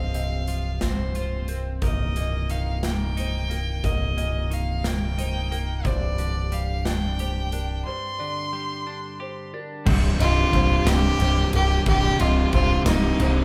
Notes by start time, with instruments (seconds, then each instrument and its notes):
Already playing: picked electric bass C1, clean electric guitar F2 F3 C4 F4, pedal steel guitar F3 C4 F4 G#4 D#5, felt piano C5, violin F5
0.14 clean electric guitar C3, felt piano D#5, closed hi-hat
0.48 clean electric guitar F3, closed hi-hat
0.81 clean electric guitar C4, violin C5, kick, snare, closed hi-hat
1.15 clean electric guitar F4, felt piano C5, closed hi-hat
1.48 clean electric guitar C4, felt piano A#4, closed hi-hat
1.82 picked electric bass C1, clean electric guitar D#2, pedal steel guitar A#3 D#4 A#4, felt piano A#4, violin D#5, kick, closed hi-hat
2.16 clean electric guitar A#2, felt piano D#5, closed hi-hat
2.50 clean electric guitar D#3, violin F5, closed hi-hat
2.83 clean electric guitar A#3, violin G5, snare, closed hi-hat
3.17 clean electric guitar D#4, felt piano C5, closed hi-hat
3.50 clean electric guitar A#3, felt piano A#4, closed hi-hat
3.84 picked electric bass C1, clean electric guitar D#2, felt piano A#4, violin D#5, kick, closed hi-hat
4.17 clean electric guitar A#2, felt piano D#5, closed hi-hat
4.51 clean electric guitar D#3, violin F5, closed hi-hat
4.84 clean electric guitar A#3, violin G5, snare, closed hi-hat
5.18 clean electric guitar D#4, felt piano C5, closed hi-hat
5.51 clean electric guitar A#3, felt piano A#4, closed hi-hat
5.84 picked electric bass C1, clean electric guitar G2, pedal steel guitar C4 D4 C5 D5, felt piano C5, violin D5, kick, closed hi-hat
6.18 clean electric guitar D3, felt piano D5, closed hi-hat
6.52 clean electric guitar G3, violin F5, closed hi-hat
6.85 clean electric guitar D4, violin G5, snare, closed hi-hat
7.19 clean electric guitar G4, felt piano C5, closed hi-hat
7.52 clean electric guitar D4, felt piano A#4, closed hi-hat
7.85 clean electric guitar G2, felt piano C5, violin C6
8.18 clean electric guitar D3, felt piano D5
8.53 clean electric guitar G3
8.87 clean electric guitar D4
9.20 clean electric guitar G4, felt piano C5
9.54 clean electric guitar D4, felt piano A#4
9.86 picked electric bass C1, overdriven electric guitar C2 G2 C3, pedal steel guitar D#3 G3 C4 C5 G5, kick, crash
10.18 picked electric bass C1, overdriven electric guitar C2 G2 C3, violin F4, felt piano D#5, ride
10.52 picked electric bass C1, overdriven electric guitar C2 G2 C3, felt piano C5, kick, ride
10.85 picked electric bass C1, overdriven electric guitar C2 G2 C3, violin G4, snare, ride
11.19 picked electric bass C1, overdriven electric guitar C2 G2 C3, felt piano C5, ride
11.53 picked electric bass C1, violin G4, felt piano A#4, ride
11.86 picked electric bass C1, overdriven electric guitar C2 G2 C3, violin G4, kick, ride
12.19 picked electric bass C1, overdriven electric guitar C2 G2 C3, violin F4, felt piano D#5, ride
12.52 picked electric bass C1, overdriven electric guitar C2 G2 C3, violin F4, felt piano C5, kick, ride
12.86 picked electric bass C1, overdriven electric guitar C2 G2 C3, violin D#4, snare, ride
13.19 picked electric bass C1, overdriven electric guitar C2 G2 C3, felt piano C5, ride